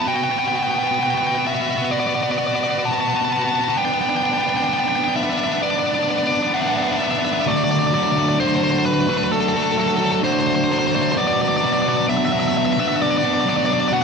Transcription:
0.02 A5
0.06 B3 F#4 G5
0.14 B3 F#4 G5
0.21 B3 F#4 G5
0.30 B3 F#4 G5
0.37 B3 F#4 G5
0.45 B3 F#4 G5
0.52 B3 F#4 G5
0.59 B3 F#4 G5
0.67 B3 F#4
0.71 B3 G5
0.76 F#4 G5
0.83 B3 F#4
0.87 B3 G5
0.92 F#4 G5
0.98 B3 F#4
1.03 B3 G5
1.07 F#4 G5
1.14 B3 F#4 G5
1.21 B3 F#4
1.27 B3 F#4 G5
1.35 B3 F#4 G5
1.45 B3 F#4 E5
1.53 B3 F#4 E5
1.60 B3 F#4 E5
1.68 B3 F#4 E5
1.76 B3 F#4 E5
1.82 B3 F#4 E5
1.91 B3 F#4 D5
1.99 B3 F#4 D5
2.06 B3 F#4 D5
2.14 B3 F#4 D5
2.21 B3 F#4 D5
2.28 B3 F#4 D5
2.37 B3 F#4 D5
2.44 B3 F#4 D5
2.52 B3 F#4 D5
2.60 B3 F#4 D5
2.67 B3 F#4 D5
2.76 B3 F#4 D5
2.83 B3 F#4 A5
2.91 B3 F#4 A5
2.98 B3 F#4 A5
3.05 B3 F#4
3.10 B3 A5
3.15 F#4 A5
3.21 B3 F#4 A5
3.29 B3 F#4 A5
3.37 B3 F#4
3.42 B3 F#4 A5
3.49 B3 A5
3.54 F#4 A5
3.59 B3 F#4
3.64 B3 A5
3.69 F#4 A5
3.76 B3 D4 G5
3.84 B3 D4 G5
3.92 B3 D4 G5
4.00 B3 D4 G5
4.08 B3 D4 G5
4.15 B3 D4 G5
4.22 B3 D4 G5
4.30 B3 D4 G5
4.37 B3 D4 G5
4.46 B3 D4 G5
4.54 B3 D4 G5
4.60 B3 D4
4.64 G5
4.69 B3 D4
4.74 B3 D4 G5
4.80 G5
4.85 B3 D4 G5
4.92 B3 D4
4.96 B3 G5
5.00 D4
5.04 B3 D4 G5
5.15 B3 D4 E5
5.22 B3 D4 E5
5.30 B3 D4 E5
5.37 B3 D4 E5
5.44 B3 D4 E5
5.52 B3 D4 E5
5.61 B3 D4 D5
5.69 B3 D4 D5
5.76 B3 D4 D5
5.84 B3 D4 D5
5.92 B3 D4 D5
5.99 B3 D4
6.03 B3 D5
6.08 D4 D5
6.16 B3 D4 D5
6.23 B3 D4
6.27 D5
6.31 B3 D4 D5
6.39 B3 D4 D5
6.46 B3 D4
6.54 B3 D4 E5 F#5
6.61 B3 D4 E5 F#5
6.68 B3 D4 F#5
6.73 E5 F#5
6.77 B3 D4 E5
6.83 B3 D4 F#5
6.88 E5 F#5
6.92 B3 D4 E5
6.99 B3 D4 E5
7.08 B3 D4 E5
7.16 B3 D4 E5
7.23 B3 D4 E5
7.32 B3 D4 E5
7.38 B3 D4 E5
7.46 D3 F#3 A3 D4 F#4 D5
7.56 D5
7.64 D5
7.71 D5
7.79 D5
7.87 D5
7.92 F#3 A3 D4 F#4 D5
8.03 D5
8.11 F#4 D5
8.16 A3 D4 D5
8.29 D5
8.38 D3 F#3 A3 D4 F#4 C5
8.48 C5
8.56 C5
8.61 A3 D4 F#4 C5
8.71 C5
8.79 C5
8.86 B4
8.94 B4
9.01 B4
9.07 A3 D4 F#4 B4
9.17 B4
9.24 B4
9.32 A4
9.40 A4
9.49 A4
9.54 A3 D4 F#4 A4
9.63 A4
9.72 A4
9.76 F#3 A3 D4 F#4 A4
9.88 A4
9.96 F#4 A4
10.01 A3 D4 A4
10.12 A4
10.23 D3 F#3 A3 D4 F#4 C5
10.33 C5
10.40 C5
10.47 C5
10.55 C5
10.64 C5
10.69 F#3 A3 D4 F#4 C5
10.79 C5
10.87 C5
10.93 A3 D4 F#4 C5
11.02 C5
11.12 B2 C5
11.17 F#3 B3 D4 F#4 D5
11.27 D5
11.33 D5
11.41 D5
11.49 D5
11.56 D5
11.62 F#3 B3 D4 F#4 D5
11.73 D5
11.82 F#4 D5
11.87 B3 D4 D5
11.97 D5
12.08 B2 F#3 B3 D4 F#4 E5
12.17 E5
12.25 E5
12.31 B3 D4 F#4 E5
12.40 E5
12.48 E5
12.57 E5
12.65 E5
12.73 F#4 E5
12.78 B3 D4 E5
12.88 E5
12.96 E5
13.02 D5
13.11 D5
13.18 D5
13.22 B3 D4 F#4 D5
13.34 D5
13.41 D5
13.46 F#3 B3 D4 F#4 D5
13.56 D5
13.66 F#4 D5
13.71 B3 D4 D5
13.81 D5
13.88 B2 D5
13.92 F#3 B3 D4 F#4 F#5

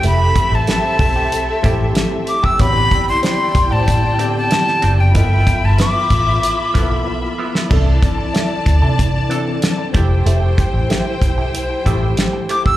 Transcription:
Already playing: F3 A3 C4 E4 G4 A4 E5
0.03 F1 A3 E4 G4 B5, closed hi-hat
0.36 kick, closed hi-hat
0.52 A1 A5, muted clean electric guitar stroke
0.67 A3 E4 G4 A5, snare, closed hi-hat
0.99 B1, muted clean electric guitar stroke, kick, open hi-hat
1.16 A3 E4 G4
1.32 muted clean electric guitar stroke, closed hi-hat
1.48 muted clean electric guitar stroke
1.62 A1 F3 A3 E4 G4, kick, closed hi-hat
1.80 muted clean electric guitar stroke
1.95 muted clean electric guitar stroke, snare, closed hi-hat
2.11 muted clean electric guitar stroke
2.27 D6, closed hi-hat
2.43 A3 E4 G4 E6, kick
2.58 A1 D3 B3 C4 C#4 E4 F#4 G4 D5 G5 B5, kick, closed hi-hat
2.71 C4 D4 G4
2.91 kick, closed hi-hat
3.07 C6, muted clean electric guitar stroke
3.23 C4 D4 G4 C6, snare, closed hi-hat
3.55 B1, muted clean electric guitar stroke, kick, closed hi-hat
3.71 A2 C4 D4 G4 A5
3.87 muted clean electric guitar stroke, kick, closed hi-hat
4.04 muted clean electric guitar stroke
4.18 D3 B3 C4 D4 G4, closed hi-hat
4.35 A5, muted clean electric guitar stroke
4.51 muted clean electric guitar stroke, snare, closed hi-hat
4.67 muted clean electric guitar stroke, snare
4.82 F#1 C4 D4 G4, closed hi-hat
4.98 G5, muted clean electric guitar stroke
5.14 G1 E3 F3 A#3 B3 D#4 E4 F4 A4 E5 G5 B5, kick, closed hi-hat
5.27 F3 B3 E4
5.47 kick, closed hi-hat
5.62 G1 A5, muted clean electric guitar stroke
5.78 F3 B3 E4 D6, snare, closed hi-hat
6.10 A1, muted clean electric guitar stroke, kick, closed hi-hat
6.26 F3 B3 E4
6.43 muted clean electric guitar stroke, closed hi-hat
6.59 muted clean electric guitar stroke
6.74 B1 F3 A#3 B3 E4 A4, kick, closed hi-hat
6.81 B3
6.91 muted clean electric guitar stroke
7.07 muted clean electric guitar stroke
7.23 muted clean electric guitar stroke
7.38 F3 B3 E4
7.55 muted clean electric guitar stroke, snare
7.70 C2 E3 C4 D4 E4 A4 D5 A5, kick, crash
8.03 kick, closed hi-hat
8.18 muted clean electric guitar stroke
8.34 D4 E4 A4, snare, closed hi-hat
8.66 D2, muted clean electric guitar stroke, kick, closed hi-hat
8.82 C3 D4 E4 A4
8.98 muted clean electric guitar stroke, kick, closed hi-hat
9.14 muted clean electric guitar stroke
9.29 E3 C4 D4 E4 A4, closed hi-hat
9.46 muted clean electric guitar stroke
9.62 muted clean electric guitar stroke, snare, closed hi-hat
9.78 muted clean electric guitar stroke
9.93 F1 F3 A3 E4 G4 C5 G5, kick, closed hi-hat
10.10 muted clean electric guitar stroke
10.26 F1 A3 E4 G4, closed hi-hat
10.58 kick, closed hi-hat
10.74 A1, muted clean electric guitar stroke
10.90 A3 E4 G4, snare, closed hi-hat
11.22 B1, muted clean electric guitar stroke, kick, closed hi-hat
11.38 A3 E4 G4
11.54 muted clean electric guitar stroke, closed hi-hat
11.70 muted clean electric guitar stroke
11.84 A1 F3 A3 E4 G4, kick, closed hi-hat
12.02 muted clean electric guitar stroke
12.17 muted clean electric guitar stroke, snare, closed hi-hat
12.33 muted clean electric guitar stroke
12.49 A3 E4 G4 D6, closed hi-hat
12.65 E6, muted clean electric guitar stroke, kick

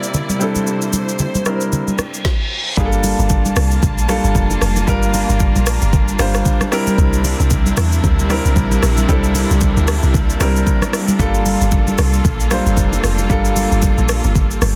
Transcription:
Already playing: C3 G3 A#3 C4 D4 E4 A#4 D5
0.03 shaker
0.14 low conga, shaker
0.29 high conga, shaker
0.39 G3 C4 D4 E4 A4 C5, shaker
0.55 high conga, shaker
0.67 shaker
0.82 shaker
0.93 high conga, shaker
1.09 shaker
1.19 low conga, shaker
1.35 high conga, shaker
1.45 G3 C4 D4 E4 A#4, cross-stick, shaker
1.61 shaker
1.72 reverse cymbal, low conga, shaker
1.88 high conga, shaker
1.98 cross-stick, high conga, shaker
2.14 shaker
2.25 kick, snare
2.77 G1 G3 A#3 D4 F4 G#4 A5, kick, shaker
2.85 A4
2.92 shaker
3.04 open hi-hat, high conga, shaker
3.19 G1, shaker
3.29 kick, low conga, shaker
3.45 high conga, shaker
3.56 C2, cross-stick, open hi-hat, shaker
3.71 shaker
3.83 A#1, kick, low conga, shaker
3.98 shaker
4.08 G3 A#3 D4 F4 A4, cross-stick, open hi-hat, high conga, shaker
4.24 G1, shaker
4.35 F1, kick, low conga, shaker
4.50 high conga, shaker
4.62 F1, cross-stick, open hi-hat, shaker
4.76 high conga, shaker
4.87 G1 G3 A#3 D4 F4 A#4, kick, shaker
5.03 shaker
5.14 open hi-hat, high conga, shaker
5.29 G1, shaker
5.40 kick, low conga, shaker
5.56 A#1, high conga, shaker
5.66 cross-stick, open hi-hat, shaker
5.81 G1, shaker
5.93 kick, low conga, shaker
6.08 shaker
6.19 G1 G3 A#3 D4 F4 C5, cross-stick, open hi-hat, high conga, shaker
6.35 cross-stick, shaker
6.45 kick, low conga, shaker
6.61 cross-stick, high conga, shaker
6.72 C3 G3 A#3 C4 D4 E4 A#4, cross-stick, open hi-hat, shaker
6.87 high conga, shaker
6.98 C2, kick, shaker
7.13 shaker
7.24 open hi-hat, high conga, shaker
7.40 C2, shaker
7.50 kick, low conga, shaker
7.66 high conga, shaker
7.77 E2, cross-stick, open hi-hat, shaker
7.92 shaker
8.04 D2, kick, low conga, shaker
8.19 shaker
8.30 G3 C4 D4 E4 A#4, cross-stick, open hi-hat, high conga, shaker
8.45 C2, shaker
8.56 A#1, kick, low conga, shaker
8.71 high conga, shaker
8.83 A#1, cross-stick, open hi-hat, shaker
8.97 high conga, shaker
9.08 C2 G3 C4 D4 E4 A4, kick, shaker
9.24 shaker
9.35 open hi-hat, high conga, shaker
9.51 C2, shaker
9.61 kick, low conga, shaker
9.77 D2, high conga, shaker
9.88 cross-stick, open hi-hat, shaker
10.03 C2, shaker
10.14 kick, low conga, shaker
10.30 shaker
10.40 C2 G3 C4 D4 E4 A#4, cross-stick, open hi-hat, high conga, shaker
10.56 shaker
10.67 kick, low conga, shaker
10.82 cross-stick, high conga, shaker
10.93 cross-stick, open hi-hat, shaker
11.08 high conga, shaker
11.19 G1 G3 A3 A#3 D4 F4 A4, kick, shaker
11.26 A#3
11.34 shaker
11.46 open hi-hat, high conga, shaker
11.61 G1, shaker
11.71 kick, low conga, shaker
11.87 high conga, shaker
11.98 C2, cross-stick, open hi-hat, shaker
12.13 shaker
12.25 A#1, kick, low conga, shaker
12.40 shaker
12.50 G3 A#3 D4 F4 C5, cross-stick, open hi-hat, high conga, shaker
12.66 G1, shaker
12.77 F1, kick, low conga, shaker
12.93 high conga, shaker
13.04 F1, cross-stick, open hi-hat, shaker
13.18 high conga, shaker
13.29 G1 G3 A#3 D4 F4 A4, kick, shaker
13.45 shaker
13.56 open hi-hat, high conga, shaker
13.72 G1, shaker
13.82 kick, low conga, shaker
13.98 A#1, high conga, shaker
14.09 cross-stick, open hi-hat, shaker
14.24 G1, shaker
14.35 kick, low conga, shaker
14.51 shaker
14.62 G1, cross-stick, open hi-hat, high conga, shaker

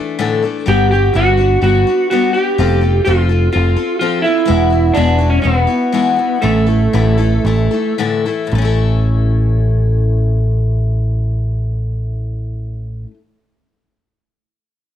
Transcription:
Already playing: E3 A3 D4 A4
0.19 A2 D3 E3 A3 D4 A4
0.42 E3 A3 D4 A4
0.66 G1 G3 B3 D4 F#4 G4
0.91 D4 F#4 G4
0.95 B3
1.14 G1 G3 B3 D4 F#4
1.37 B3 D4 F#4
1.61 G1 G3 B3 D4 F#4
1.87 B3 D4 F#4
2.10 G3 B3 D4 F#4
2.33 D4 F#4 G4
2.37 B3
2.58 F1 F3 C4 F4 A4
2.81 C4 F4 A4
3.05 F1 F3 C4 F4 A4
3.29 C4 F4 A4
3.52 F1 F3 C4 F4 A4
3.76 C4 F4 A4
3.99 F3 C4 F4 A4
4.22 E4 F4 A4
4.27 C4
4.45 E3 G#3 B3 E4 F#4
4.50 E1
4.70 B3 E4 F#4
4.94 E1 E3 G#3 B3 D4 E4 F#4
5.18 B3 E4 F#4
5.30 C#4
5.42 E1 G#3 B3 C4 E4 F#4
5.59 B3
5.67 B3 E4 F#4
5.92 E3 G#3 B3 E4 F#4
6.16 B3 E4 F#4
6.42 A1 A2 D3 E3 A3 E4 A4
6.66 E3 A3 E4 A4
6.93 A1 A2 D3 E3 A3 E4 A4
7.18 E3 A3 E4 A4
7.45 A1 E3 A3 E4 A4
7.71 E3 A3 E4 A4
7.98 A2 D3 E3 A3 E4 A4
8.26 E3 A3 E4 A4
8.47 A2
8.52 A1 E3 A3
8.58 C#4 E4
8.65 A4

